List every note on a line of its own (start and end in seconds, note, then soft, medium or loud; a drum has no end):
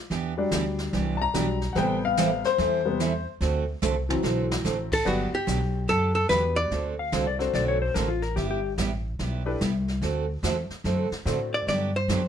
0.10 0.43 E2 medium
0.10 0.33 E3 medium
0.10 0.33 B3 medium
0.10 0.33 D4 medium
0.10 0.33 G4 medium
0.10 brush sweep soft
0.10 snare soft
0.37 1.32 F#3 medium
0.37 1.32 G3 medium
0.37 1.33 D4 medium
0.51 0.87 D2 medium
0.51 0.64 E3 medium
0.51 0.64 B3 medium
0.51 0.64 D4 medium
0.51 0.64 G4 medium
0.51 snare medium
0.51 hi-hat pedal medium
0.78 snare soft
0.93 1.28 C2 loud
0.93 1.15 E3 medium
0.93 1.16 B3 medium
0.93 1.16 D4 medium
0.93 1.16 G4 medium
0.93 brush sweep soft
0.93 snare soft
1.17 1.19 A5 medium
1.22 1.75 A#5 loud
1.34 1.70 B1 loud
1.34 1.46 E3 medium
1.34 1.58 F#3 medium
1.34 1.58 G3 soft
1.34 1.46 B3 medium
1.34 1.59 D4 medium
1.34 1.47 D4 medium
1.34 1.47 G4 medium
1.34 snare medium
1.34 hi-hat pedal medium
1.61 snare soft
1.73 2.42 A1 medium
1.73 2.40 C3 medium
1.73 1.98 E3 medium
1.73 1.98 G3 medium
1.73 2.41 G3 medium
1.73 2.41 B3 medium
1.73 1.98 C4 medium
1.73 1.98 E4 medium
1.73 1.98 A4 medium
1.73 1.76 F#5 medium
1.73 brush sweep medium
1.73 snare soft
1.78 2.03 G5 loud
2.05 2.44 F5 loud
2.17 2.29 E3 medium
2.17 2.29 G3 medium
2.17 2.29 C4 medium
2.17 2.29 E4 medium
2.17 2.29 A4 medium
2.17 snare medium
2.17 hi-hat pedal medium
2.44 3.25 C5 loud
2.44 snare soft
2.58 3.24 E2 loud
2.58 2.81 E3 medium
2.58 2.81 G3 medium
2.58 2.81 C4 medium
2.58 2.81 E4 medium
2.58 2.81 A4 medium
2.58 brush sweep medium
2.58 snare soft
2.85 2.98 C3 medium
2.85 2.98 G3 soft
2.85 2.99 B3 medium
3.00 3.12 E3 medium
3.00 3.12 G3 medium
3.00 3.12 C4 medium
3.00 3.12 E4 medium
3.00 3.12 A4 medium
3.00 snare medium
3.00 hi-hat pedal medium
3.41 3.74 D2 medium
3.41 3.63 D3 medium
3.41 3.63 A3 medium
3.41 3.63 C4 medium
3.41 3.64 F#4 medium
3.41 3.64 A4 medium
3.41 brush sweep soft
3.41 snare soft
3.82 4.17 C2 medium
3.82 3.94 D3 medium
3.82 3.94 A3 medium
3.82 3.94 C4 medium
3.82 3.94 F#4 medium
3.82 3.94 A4 loud
3.82 hi-hat pedal medium
3.82 mid tom medium
4.09 5.02 E3 medium
4.09 5.02 F#3 medium
4.09 5.03 C4 medium
4.09 mid tom medium
4.23 4.59 B1 medium
4.23 4.45 D3 medium
4.23 4.45 A3 medium
4.23 4.45 C4 medium
4.23 4.46 F#4 medium
4.23 4.46 A4 medium
4.23 snare medium
4.51 snare loud
4.64 5.00 A1 medium
4.64 4.76 D3 medium
4.64 4.76 A3 medium
4.64 4.76 C4 medium
4.64 4.77 F#4 medium
4.64 4.77 A4 medium
4.64 snare medium
4.64 hi-hat pedal medium
4.92 5.06 A4 medium
4.92 kick medium
4.92 crash medium
5.05 5.31 G1 medium
5.05 5.28 D3 medium
5.05 5.28 F#3 medium
5.05 5.30 B3 medium
5.05 5.28 B3 medium
5.05 5.30 D4 medium
5.05 5.29 D4 medium
5.05 5.30 F#4 medium
5.05 5.34 F#4 medium
5.05 5.30 G4 medium
5.05 5.29 G4 medium
5.05 5.30 B4 medium
5.05 brush sweep medium
5.05 snare soft
5.33 5.86 G4 medium
5.33 muted upright bass stroke soft
5.47 5.87 B1 medium
5.47 5.59 D3 medium
5.47 5.59 F#3 medium
5.47 5.59 B3 medium
5.47 5.59 D4 medium
5.47 5.59 G4 medium
5.47 snare medium
5.47 hi-hat pedal medium
5.88 6.29 F#2 medium
5.88 6.10 D3 medium
5.88 6.11 F#3 medium
5.88 6.11 B3 medium
5.88 6.11 D4 medium
5.88 6.11 G4 medium
5.88 6.14 A4 loud
5.88 brush sweep soft
5.88 snare soft
6.15 6.29 A4 loud
6.29 6.70 E2 medium
6.29 6.42 D3 medium
6.29 6.42 F#3 medium
6.29 6.71 B3 medium
6.29 6.42 B3 medium
6.29 6.71 D4 medium
6.29 6.42 D4 medium
6.29 6.71 F#4 soft
6.29 6.71 G4 medium
6.29 6.42 G4 medium
6.29 6.57 B4 loud
6.29 6.71 B4 medium
6.29 snare medium
6.29 hi-hat pedal medium
6.56 6.95 D5 loud
6.71 7.11 D2 medium
6.71 6.94 D3 medium
6.71 6.94 A3 medium
6.71 6.94 C4 medium
6.71 6.94 F#4 medium
6.71 6.94 A4 medium
6.71 brush sweep soft
6.71 snare soft
6.99 7.26 F5 loud
7.12 7.53 C2 medium
7.12 7.24 D3 medium
7.12 7.25 A3 medium
7.12 7.25 C4 medium
7.12 7.25 F#4 loud
7.12 7.25 A4 medium
7.12 snare medium
7.12 hi-hat pedal medium
7.27 7.40 D5 medium
7.39 7.92 C4 medium
7.39 7.92 D4 medium
7.39 7.92 F#4 medium
7.39 7.92 A4 medium
7.39 7.92 C5 medium
7.39 7.54 C5 medium
7.39 snare soft
7.53 7.94 B1 loud
7.53 7.76 D3 medium
7.53 7.76 A3 medium
7.53 7.77 C4 medium
7.53 7.77 F#4 medium
7.53 7.77 A4 medium
7.53 7.68 D5 medium
7.53 brush sweep soft
7.53 snare soft
7.68 7.81 C#5 medium
7.82 7.95 C5 medium
7.94 8.35 A1 medium
7.94 8.07 D3 medium
7.94 8.07 A3 medium
7.94 8.07 C4 medium
7.94 8.07 F#4 medium
7.94 8.08 A4 medium
7.94 8.08 A#4 medium
7.94 snare medium
7.94 hi-hat pedal medium
8.08 8.22 F4 medium
8.22 8.36 A#4 medium
8.22 snare soft
8.36 8.77 G1 medium
8.36 8.59 G3 medium
8.36 8.59 B3 medium
8.36 8.59 E4 medium
8.36 8.49 G4 medium
8.36 8.59 G4 medium
8.36 brush sweep medium
8.36 snare soft
8.51 8.73 G4 medium
8.78 9.18 A1 loud
8.78 8.90 G3 medium
8.78 8.90 B3 medium
8.78 8.90 E4 medium
8.78 8.90 G4 medium
8.78 snare medium
8.78 hi-hat pedal medium
9.19 9.59 B1 medium
9.19 9.42 G3 medium
9.19 9.42 B3 medium
9.19 9.42 E4 medium
9.19 9.42 G4 medium
9.19 brush sweep soft
9.19 snare soft
9.46 9.59 D4 medium
9.46 9.59 E4 medium
9.46 9.59 G4 medium
9.46 9.59 A4 medium
9.46 9.59 B4 medium
9.61 10.01 C2 medium
9.61 9.72 G3 medium
9.61 9.73 B3 medium
9.61 9.73 E4 medium
9.61 9.73 G4 medium
9.61 snare medium
9.61 hi-hat pedal soft
9.88 snare soft
10.01 10.42 D2 medium
10.01 10.24 D3 medium
10.01 10.24 A3 medium
10.01 10.24 C4 medium
10.01 10.25 F#4 medium
10.01 10.25 A4 medium
10.01 brush sweep soft
10.01 snare soft
10.43 10.68 E2 loud
10.43 10.55 D3 medium
10.43 10.55 A3 medium
10.43 10.55 C4 medium
10.43 10.55 F#4 medium
10.43 10.55 A4 medium
10.43 snare medium
10.43 hi-hat pedal medium
10.70 muted upright bass stroke soft
10.70 snare soft
10.84 11.09 F#2 medium
10.84 11.07 D3 medium
10.84 11.07 A3 medium
10.84 11.07 C4 medium
10.84 11.07 F#4 medium
10.84 11.07 A4 medium
10.84 brush sweep soft
10.84 snare soft
11.11 muted upright bass stroke soft
11.11 snare soft
11.25 11.66 A2 loud
11.25 11.38 D3 medium
11.25 11.38 A3 medium
11.25 11.67 C4 medium
11.25 11.38 C4 medium
11.25 11.67 D4 soft
11.25 11.67 F#4 medium
11.25 11.38 F#4 medium
11.25 11.67 A4 soft
11.25 11.38 A4 medium
11.25 11.67 C5 medium
11.25 snare medium
11.25 hi-hat pedal medium
11.54 11.67 D5 medium
11.67 12.07 G2 medium
11.67 11.90 D3 medium
11.67 11.90 F#3 medium
11.67 11.90 B3 medium
11.67 11.90 D4 medium
11.67 11.90 G4 medium
11.67 11.93 D5 medium
11.67 brush sweep soft
11.67 snare soft
11.96 12.28 C5 medium
12.08 12.28 F#2 medium
12.08 12.21 D3 medium
12.08 12.21 F#3 medium
12.08 12.21 B3 medium
12.08 12.21 D4 medium
12.08 12.21 G4 medium
12.08 snare medium
12.08 hi-hat pedal medium